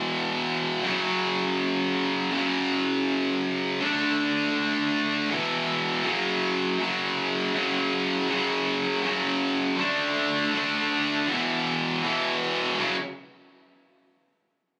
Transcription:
0, 0, Header, 1, 2, 480
1, 0, Start_track
1, 0, Key_signature, 3, "minor"
1, 0, Tempo, 372208
1, 1077, Time_signature, 4, 2, 24, 8
1, 10197, Tempo, 374766
1, 19020, End_track
2, 0, Start_track
2, 0, Title_t, "Distorted electric guitar"
2, 0, Program_c, 0, 30
2, 0, Note_on_c, 0, 40, 100
2, 0, Note_on_c, 0, 47, 105
2, 0, Note_on_c, 0, 52, 110
2, 1054, Note_off_c, 0, 40, 0
2, 1068, Note_off_c, 0, 47, 0
2, 1069, Note_on_c, 0, 42, 91
2, 1078, Note_off_c, 0, 52, 0
2, 1093, Note_on_c, 0, 49, 93
2, 1104, Note_on_c, 0, 54, 112
2, 2975, Note_off_c, 0, 42, 0
2, 2981, Note_on_c, 0, 42, 104
2, 2989, Note_off_c, 0, 49, 0
2, 3003, Note_on_c, 0, 49, 102
2, 3022, Note_off_c, 0, 54, 0
2, 3027, Note_on_c, 0, 54, 112
2, 4893, Note_off_c, 0, 42, 0
2, 4899, Note_off_c, 0, 49, 0
2, 4904, Note_on_c, 0, 50, 106
2, 4916, Note_off_c, 0, 54, 0
2, 4923, Note_on_c, 0, 57, 94
2, 4949, Note_on_c, 0, 62, 108
2, 6814, Note_off_c, 0, 50, 0
2, 6823, Note_off_c, 0, 57, 0
2, 6825, Note_on_c, 0, 40, 96
2, 6836, Note_off_c, 0, 62, 0
2, 6850, Note_on_c, 0, 47, 106
2, 6874, Note_on_c, 0, 52, 105
2, 7775, Note_off_c, 0, 40, 0
2, 7781, Note_on_c, 0, 42, 93
2, 7788, Note_off_c, 0, 47, 0
2, 7799, Note_off_c, 0, 52, 0
2, 7801, Note_on_c, 0, 49, 98
2, 7823, Note_on_c, 0, 54, 114
2, 8734, Note_off_c, 0, 42, 0
2, 8744, Note_off_c, 0, 49, 0
2, 8751, Note_on_c, 0, 42, 91
2, 8755, Note_off_c, 0, 54, 0
2, 8779, Note_on_c, 0, 49, 96
2, 8799, Note_on_c, 0, 54, 104
2, 9713, Note_off_c, 0, 42, 0
2, 9715, Note_off_c, 0, 49, 0
2, 9718, Note_on_c, 0, 42, 64
2, 9741, Note_on_c, 0, 49, 80
2, 9759, Note_off_c, 0, 54, 0
2, 9764, Note_on_c, 0, 54, 76
2, 10675, Note_off_c, 0, 49, 0
2, 10678, Note_off_c, 0, 42, 0
2, 10684, Note_on_c, 0, 42, 85
2, 10704, Note_on_c, 0, 49, 90
2, 10719, Note_off_c, 0, 54, 0
2, 10724, Note_on_c, 0, 54, 93
2, 11620, Note_off_c, 0, 42, 0
2, 11625, Note_on_c, 0, 42, 74
2, 11635, Note_off_c, 0, 49, 0
2, 11656, Note_on_c, 0, 49, 77
2, 11662, Note_off_c, 0, 54, 0
2, 11667, Note_on_c, 0, 54, 83
2, 12574, Note_off_c, 0, 49, 0
2, 12575, Note_off_c, 0, 42, 0
2, 12579, Note_on_c, 0, 50, 90
2, 12596, Note_off_c, 0, 54, 0
2, 12604, Note_on_c, 0, 57, 103
2, 12619, Note_on_c, 0, 62, 90
2, 13532, Note_off_c, 0, 50, 0
2, 13545, Note_off_c, 0, 57, 0
2, 13552, Note_off_c, 0, 62, 0
2, 13555, Note_on_c, 0, 50, 72
2, 13572, Note_on_c, 0, 57, 72
2, 13594, Note_on_c, 0, 62, 76
2, 14501, Note_off_c, 0, 50, 0
2, 14509, Note_off_c, 0, 57, 0
2, 14510, Note_on_c, 0, 40, 77
2, 14520, Note_off_c, 0, 62, 0
2, 14536, Note_on_c, 0, 47, 97
2, 14556, Note_on_c, 0, 52, 99
2, 15459, Note_off_c, 0, 40, 0
2, 15472, Note_off_c, 0, 47, 0
2, 15472, Note_on_c, 0, 40, 73
2, 15482, Note_off_c, 0, 52, 0
2, 15493, Note_on_c, 0, 47, 69
2, 15515, Note_on_c, 0, 52, 71
2, 16421, Note_off_c, 0, 40, 0
2, 16431, Note_off_c, 0, 47, 0
2, 16442, Note_off_c, 0, 52, 0
2, 16454, Note_on_c, 0, 42, 78
2, 16462, Note_on_c, 0, 49, 88
2, 16472, Note_on_c, 0, 54, 97
2, 16638, Note_off_c, 0, 42, 0
2, 16642, Note_off_c, 0, 49, 0
2, 16646, Note_off_c, 0, 54, 0
2, 19020, End_track
0, 0, End_of_file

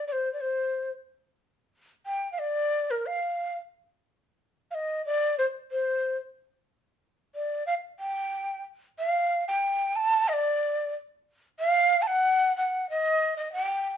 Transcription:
0, 0, Header, 1, 2, 480
1, 0, Start_track
1, 0, Tempo, 663717
1, 769, Time_signature, 2, 2, 24, 8
1, 5085, Tempo, 650759
1, 10204, End_track
2, 0, Start_track
2, 0, Title_t, "Quena"
2, 0, Program_c, 0, 77
2, 54, Note_on_c, 0, 74, 61
2, 89, Note_on_c, 0, 72, 67
2, 96, Note_off_c, 0, 74, 0
2, 228, Note_off_c, 0, 72, 0
2, 242, Note_on_c, 0, 74, 44
2, 295, Note_on_c, 0, 72, 62
2, 306, Note_off_c, 0, 74, 0
2, 653, Note_off_c, 0, 72, 0
2, 1490, Note_on_c, 0, 79, 77
2, 1668, Note_off_c, 0, 79, 0
2, 1682, Note_on_c, 0, 77, 53
2, 1727, Note_on_c, 0, 74, 91
2, 1738, Note_off_c, 0, 77, 0
2, 2102, Note_on_c, 0, 70, 68
2, 2113, Note_off_c, 0, 74, 0
2, 2216, Note_on_c, 0, 77, 73
2, 2227, Note_off_c, 0, 70, 0
2, 2575, Note_off_c, 0, 77, 0
2, 3406, Note_on_c, 0, 77, 74
2, 3431, Note_on_c, 0, 75, 80
2, 3439, Note_off_c, 0, 77, 0
2, 3632, Note_off_c, 0, 75, 0
2, 3656, Note_on_c, 0, 74, 102
2, 3877, Note_off_c, 0, 74, 0
2, 3894, Note_on_c, 0, 72, 73
2, 3947, Note_off_c, 0, 72, 0
2, 4132, Note_on_c, 0, 72, 65
2, 4464, Note_off_c, 0, 72, 0
2, 5322, Note_on_c, 0, 74, 62
2, 5549, Note_off_c, 0, 74, 0
2, 5553, Note_on_c, 0, 77, 98
2, 5610, Note_off_c, 0, 77, 0
2, 5797, Note_on_c, 0, 79, 81
2, 6257, Note_off_c, 0, 79, 0
2, 6530, Note_on_c, 0, 77, 98
2, 6868, Note_off_c, 0, 77, 0
2, 6891, Note_on_c, 0, 79, 83
2, 7244, Note_on_c, 0, 81, 98
2, 7255, Note_off_c, 0, 79, 0
2, 7485, Note_on_c, 0, 75, 88
2, 7496, Note_off_c, 0, 81, 0
2, 7521, Note_on_c, 0, 74, 96
2, 7528, Note_off_c, 0, 75, 0
2, 7970, Note_off_c, 0, 74, 0
2, 8452, Note_on_c, 0, 77, 105
2, 8765, Note_on_c, 0, 81, 67
2, 8776, Note_off_c, 0, 77, 0
2, 8807, Note_on_c, 0, 78, 91
2, 8818, Note_off_c, 0, 81, 0
2, 9166, Note_off_c, 0, 78, 0
2, 9170, Note_on_c, 0, 78, 74
2, 9393, Note_off_c, 0, 78, 0
2, 9412, Note_on_c, 0, 75, 99
2, 9744, Note_off_c, 0, 75, 0
2, 9761, Note_on_c, 0, 75, 71
2, 9871, Note_off_c, 0, 75, 0
2, 9876, Note_on_c, 0, 79, 89
2, 10204, Note_off_c, 0, 79, 0
2, 10204, End_track
0, 0, End_of_file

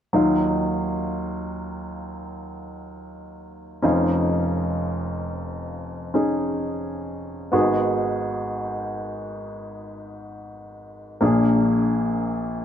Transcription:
0, 0, Header, 1, 2, 480
1, 0, Start_track
1, 0, Key_signature, -6, "minor"
1, 0, Tempo, 923077
1, 75, Time_signature, 4, 2, 24, 8
1, 6577, End_track
2, 0, Start_track
2, 0, Title_t, "Grand piano"
2, 0, Program_c, 0, 0
2, 67, Note_on_c, 0, 54, 43
2, 72, Note_on_c, 0, 51, 42
2, 73, Note_on_c, 0, 63, 37
2, 74, Note_on_c, 0, 39, 42
2, 79, Note_on_c, 0, 65, 48
2, 168, Control_c, 0, 64, 127
2, 1971, Note_off_c, 0, 54, 0
2, 1973, Note_off_c, 0, 51, 0
2, 1973, Note_off_c, 0, 63, 0
2, 1974, Note_off_c, 0, 39, 0
2, 1976, Note_off_c, 0, 65, 0
2, 1989, Note_on_c, 0, 61, 48
2, 1994, Note_on_c, 0, 63, 43
2, 1995, Note_on_c, 0, 29, 44
2, 1995, Note_on_c, 0, 41, 44
2, 2001, Control_c, 0, 64, 0
2, 2001, Note_on_c, 0, 65, 49
2, 2105, Control_c, 0, 64, 127
2, 3171, Note_off_c, 0, 61, 0
2, 3174, Note_off_c, 0, 63, 0
2, 3177, Note_off_c, 0, 65, 0
2, 3193, Note_on_c, 0, 61, 35
2, 3196, Note_on_c, 0, 63, 32
2, 3199, Note_on_c, 0, 68, 38
2, 3894, Note_off_c, 0, 41, 0
2, 3895, Note_off_c, 0, 29, 0
2, 3909, Note_on_c, 0, 59, 46
2, 3913, Note_off_c, 0, 68, 0
2, 3914, Note_off_c, 0, 61, 0
2, 3914, Note_on_c, 0, 44, 46
2, 3915, Note_on_c, 0, 66, 45
2, 3916, Note_off_c, 0, 63, 0
2, 3916, Note_on_c, 0, 32, 48
2, 3921, Control_c, 0, 64, 0
2, 3921, Note_on_c, 0, 68, 53
2, 4009, Control_c, 0, 64, 127
2, 5811, Note_off_c, 0, 59, 0
2, 5814, Note_off_c, 0, 44, 0
2, 5814, Note_off_c, 0, 66, 0
2, 5815, Note_off_c, 0, 32, 0
2, 5817, Note_off_c, 0, 68, 0
2, 5827, Note_on_c, 0, 58, 51
2, 5833, Note_on_c, 0, 46, 49
2, 5833, Note_on_c, 0, 62, 45
2, 5834, Note_on_c, 0, 34, 50
2, 5840, Note_on_c, 0, 68, 52
2, 5843, Control_c, 0, 64, 0
2, 5935, Control_c, 0, 64, 127
2, 6577, Note_off_c, 0, 34, 0
2, 6577, Note_off_c, 0, 46, 0
2, 6577, Note_off_c, 0, 58, 0
2, 6577, Note_off_c, 0, 62, 0
2, 6577, Note_off_c, 0, 68, 0
2, 6577, End_track
0, 0, End_of_file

